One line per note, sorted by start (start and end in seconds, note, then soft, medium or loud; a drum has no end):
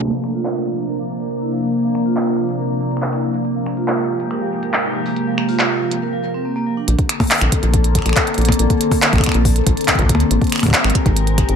0.02 5.98 C3 medium
0.02 5.98 A#3 medium
0.02 0.09 A#3 medium
0.02 3.42 D4 medium
0.02 closed hi-hat soft
0.02 percussion blips medium
0.05 percussion blips medium
0.08 percussion blips medium
0.10 0.20 F3 medium
0.10 percussion blips medium
0.24 0.31 A#3 medium
0.24 finger snap medium
0.34 0.42 F4 medium
0.34 closed hi-hat medium
0.45 0.52 A#4 medium
0.45 clap loud
0.56 0.60 F4 medium
0.67 0.74 F3 medium
0.77 0.87 A#3 medium
0.77 closed hi-hat medium
0.88 0.98 A#4 medium
0.88 closed hi-hat medium
0.99 1.06 F3 medium
1.09 1.20 A#3 medium
1.20 1.24 A#4 medium
1.20 closed hi-hat medium
1.31 1.38 A#4 medium
1.31 closed hi-hat soft
1.42 1.49 E4 medium
1.52 1.59 F3 medium
1.63 1.72 A#3 medium
1.63 open hi-hat medium
1.74 1.81 A#3 medium
1.74 closed hi-hat soft
1.84 1.92 F3 medium
1.95 2.02 A#3 medium
1.95 finger snap medium
2.06 2.13 F4 medium
2.06 closed hi-hat medium
2.16 2.24 A#4 medium
2.16 clap loud
2.16 closed hi-hat soft
2.27 2.32 F4 medium
2.38 2.45 F3 medium
2.49 2.59 A#3 medium
2.49 closed hi-hat medium
2.59 2.70 A#4 medium
2.59 closed hi-hat soft
2.70 2.77 F3 loud
2.81 2.91 A#3 medium
2.81 open hi-hat medium
2.91 2.96 A#4 medium
2.91 closed hi-hat medium
2.97 finger snap soft
3.02 3.09 A#4 medium
3.02 clap loud
3.02 closed hi-hat medium
3.13 3.20 E4 medium
3.13 finger snap soft
3.24 3.31 F3 medium
3.34 3.44 A#3 medium
3.34 closed hi-hat medium
3.45 6.00 G#3 medium
3.45 3.52 A#3 medium
3.45 6.00 G4 medium
3.45 closed hi-hat medium
3.56 3.63 F3 medium
3.66 3.74 A#3 medium
3.66 finger snap medium
3.77 3.84 F4 loud
3.77 closed hi-hat medium
3.88 3.95 A#4 medium
3.88 clap loud
3.88 closed hi-hat medium
3.99 4.03 F4 medium
4.09 4.17 F3 medium
4.20 4.30 A#3 medium
4.20 closed hi-hat medium
4.31 4.41 A#4 medium
4.31 finger snap soft
4.31 closed hi-hat soft
4.41 4.49 F3 loud
4.52 4.62 A#3 medium
4.63 4.67 A#4 medium
4.63 closed hi-hat medium
4.74 4.81 A#4 medium
4.74 clap loud
4.74 closed hi-hat soft
4.84 4.92 D#4 medium
4.95 5.02 F3 medium
5.06 5.15 A#3 medium
5.06 open hi-hat medium
5.16 5.24 A#3 medium
5.16 closed hi-hat soft
5.27 5.34 F3 loud
5.38 5.45 A#3 loud
5.38 finger snap medium
5.49 5.56 F4 medium
5.49 open hi-hat medium
5.59 5.67 A#4 medium
5.59 clap loud
5.59 closed hi-hat soft
5.70 5.74 F4 medium
5.81 5.88 F3 medium
5.91 6.02 A#3 medium
5.91 closed hi-hat medium
6.02 6.12 A#4 medium
6.13 6.20 F3 medium
6.24 6.34 A#4 medium
6.34 6.42 C4 medium
6.45 6.49 A#3 medium
6.56 6.63 A#3 medium
6.66 6.77 F3 medium
6.77 6.84 D4 medium
6.88 6.95 A#1 loud
6.88 10.27 D3 medium
6.88 10.27 A#3 medium
6.88 11.56 C4 medium
6.88 10.27 A4 medium
6.88 closed hi-hat medium
6.99 kick loud
6.99 closed hi-hat soft
7.09 finger snap medium
7.09 closed hi-hat loud
7.20 kick loud
7.20 open hi-hat soft
7.20 percussion blips medium
7.24 open hi-hat soft
7.27 clap loud
7.27 closed hi-hat medium
7.27 open hi-hat soft
7.31 open hi-hat soft
7.34 open hi-hat soft
7.38 7.49 A#1 medium
7.38 finger snap medium
7.38 closed hi-hat soft
7.38 open hi-hat medium
7.52 kick loud
7.52 closed hi-hat medium
7.63 8.01 A#1 medium
7.63 closed hi-hat soft
7.74 kick loud
7.74 closed hi-hat medium
7.84 closed hi-hat soft
7.95 finger snap soft
7.95 kick loud
7.95 closed hi-hat loud
7.99 finger snap soft
8.02 8.13 A#1 medium
8.02 finger snap soft
8.06 finger snap soft
8.06 closed hi-hat soft
8.09 finger snap soft
8.13 finger snap soft
8.13 kick loud
8.13 clap loud
8.13 closed hi-hat medium
8.27 closed hi-hat soft
8.34 8.53 A#1 medium
8.34 closed hi-hat soft
8.38 closed hi-hat soft
8.41 closed hi-hat soft
8.45 kick loud
8.45 closed hi-hat medium
8.45 percussion blips medium
8.52 closed hi-hat medium
8.54 closed hi-hat soft
8.59 8.67 A#1 loud
8.59 closed hi-hat medium
8.70 kick loud
8.70 closed hi-hat soft
8.81 closed hi-hat loud
8.91 kick loud
8.91 open hi-hat medium
8.91 percussion blips medium
9.02 clap loud
9.02 closed hi-hat medium
9.13 9.20 A#1 medium
9.13 finger snap soft
9.13 kick loud
9.13 closed hi-hat soft
9.16 finger snap soft
9.18 finger snap soft
9.18 kick loud
9.21 finger snap soft
9.24 finger snap soft
9.24 closed hi-hat medium
9.26 finger snap soft
9.26 kick medium
9.29 finger snap soft
9.32 9.61 A#1 medium
9.32 finger snap soft
9.32 closed hi-hat soft
9.45 kick loud
9.45 open hi-hat medium
9.56 closed hi-hat soft
9.66 9.74 A#1 medium
9.66 kick loud
9.66 closed hi-hat loud
9.77 closed hi-hat soft
9.81 closed hi-hat soft
9.84 kick medium
9.84 clap loud
9.84 closed hi-hat soft
9.88 closed hi-hat medium
9.92 kick medium
9.92 closed hi-hat soft
9.95 10.11 A#1 medium
9.95 closed hi-hat soft
9.99 kick medium
9.99 closed hi-hat soft
10.09 10.24 D2 medium
10.09 kick loud
10.09 closed hi-hat loud
10.15 percussion blips medium
10.20 closed hi-hat soft
10.31 10.38 G#1 loud
10.31 11.56 G#3 medium
10.31 11.56 G4 medium
10.31 11.56 A#4 medium
10.31 closed hi-hat medium
10.41 kick loud
10.41 closed hi-hat soft
10.44 closed hi-hat soft
10.47 closed hi-hat soft
10.50 finger snap medium
10.50 closed hi-hat soft
10.52 closed hi-hat loud
10.55 finger snap soft
10.55 closed hi-hat soft
10.58 finger snap soft
10.58 closed hi-hat soft
10.60 finger snap soft
10.60 kick medium
10.60 closed hi-hat soft
10.60 open hi-hat medium
10.60 percussion blips medium
10.66 finger snap soft
10.66 kick medium
10.68 finger snap soft
10.68 kick medium
10.71 kick loud
10.71 clap loud
10.71 closed hi-hat medium
10.84 10.92 G#1 medium
10.84 finger snap medium
10.90 closed hi-hat soft
10.95 kick loud
10.95 closed hi-hat medium
11.06 11.43 G#1 medium
11.06 kick loud
11.06 closed hi-hat soft
11.17 closed hi-hat medium
11.27 closed hi-hat soft
11.38 finger snap soft
11.38 kick loud
11.38 closed hi-hat medium
11.49 11.56 G#1 medium
11.49 closed hi-hat soft